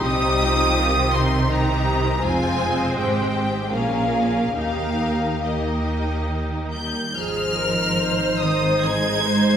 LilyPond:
<<
  \new Staff \with { instrumentName = "Violin section" } { \time 3/4 \key aes \major \tempo 4 = 75 ees'''4. c'''8 bes''4 | aes''4 g''4 f''4 | f''4 ees''4. g'''8 | f'''4. ees'''8 aes'''4 | }
  \new Staff \with { instrumentName = "Violin section" } { \time 3/4 \key aes \major << { g'2 g'4 | c''2 bes'4 | bes'4 bes'4.~ bes'16 r16 | <ees' c''>2. | } \\ { ees'4 f'8 ees'8 c'4 | f'4 g'4 aes'4 | g'4 g'4.~ g'16 r16 | r2. | } >> }
  \new Staff \with { instrumentName = "Viola section" } { \time 3/4 \key aes \major << { c'4 c'4 ees'4 | c'2 des'4 | ees'4 ees'4.~ ees'16 r16 | aes'8 bes'8 c''8 c''8 aes'8 c''8 | } \\ { g8 f8 ees4 ees4 | aes2 bes4 | bes4 bes4.~ bes16 r16 | r2. | } >> }
  \new Staff \with { instrumentName = "Cello section" } { \clef bass \time 3/4 \key aes \major c2. | f,4 aes,4 bes,4 | ees,2~ ees,8 g8 | f4. ees8 aes4 | }
  \new Staff \with { instrumentName = "Double bass section" } { \clef bass \time 3/4 \key aes \major c,2. | f,,4 aes,,4 bes,,4 | ees,2~ ees,8. r16 | aes,,2. | }
>>